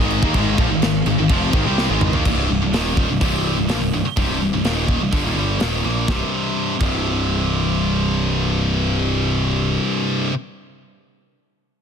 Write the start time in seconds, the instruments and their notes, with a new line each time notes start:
Already playing: string section D#3 G#3 G#4 D#5
0.00 picked electric bass G#1, distorted electric guitar G#2 D#3 G#3
0.10 crash
0.23 picked electric bass D#2, distorted electric guitar D#3 A#3, kick
0.34 picked electric bass G#1, distorted electric guitar G#2 D#3 G#3, string section F5, kick, crash
0.58 picked electric bass A#1, distorted electric guitar A#2 F3, kick, crash
0.71 picked electric bass G#1, distorted electric guitar G#2 D#3
0.82 picked electric bass G#1, distorted electric guitar G#2 D#3, snare, crash
1.06 picked electric bass G#1, distorted electric guitar G#2 D#3, crash
1.18 picked electric bass G#1, distorted electric guitar G#2 D#3
1.30 picked electric bass F1, distorted electric guitar F2 C3 F3, kick, crash
1.53 picked electric bass G#1, distorted electric guitar G#2 D#3, kick, crash
1.65 picked electric bass C2, distorted electric guitar C3 G3 C4
1.78 snare
1.89 picked electric bass G#1, distorted electric guitar G#2 D#3 G#3
2.01 mid tom
2.13 picked electric bass D#2, distorted electric guitar D#3 A#3, floor tom
2.25 picked electric bass C1, distorted electric guitar C2 G2 C3, kick, crash
2.50 picked electric bass C1, distorted electric guitar C2 G2
2.62 picked electric bass C1, distorted electric guitar C2 G2
2.73 picked electric bass D#1, distorted electric guitar D#2 A#2 D#3, snare, open hi-hat
2.97 kick
3.09 picked electric bass C1, distorted electric guitar C2 G2
3.21 picked electric bass C1, distorted electric guitar C2 G2 C3, kick, open hi-hat
3.57 picked electric bass C1, distorted electric guitar C2 G2
3.69 picked electric bass A#1, distorted electric guitar A#2 F3, snare, open hi-hat
3.81 picked electric bass C1, distorted electric guitar C2 G2
3.93 picked electric bass C1, distorted electric guitar C2 G2
4.05 muted picked electric bass stroke, muted distorted electric guitar stroke
4.17 picked electric bass C1, distorted electric guitar C2 G2 C3, kick, open hi-hat
4.40 picked electric bass C1, distorted electric guitar C2 G2
4.52 picked electric bass C1, distorted electric guitar C2 G2
4.64 picked electric bass D#1, distorted electric guitar D#2 A#2 D#3, snare, open hi-hat
4.88 kick
5.01 picked electric bass C1, distorted electric guitar C2 G2
5.13 picked electric bass G1, distorted electric guitar G2 D3, kick, open hi-hat
5.24 picked electric bass D#1, distorted electric guitar D#2 A#2
5.36 picked electric bass G1, distorted electric guitar G2 D3 G3
5.60 picked electric bass D#1, distorted electric guitar D#2 A#2 D#3, snare, open hi-hat
5.84 picked electric bass A#1, distorted electric guitar A#2 F3 A#3
6.07 picked electric bass C1, distorted electric guitar C2 G2 C3, kick, snare
6.81 picked electric bass C1, distorted electric guitar C2 G2 C3, kick, crash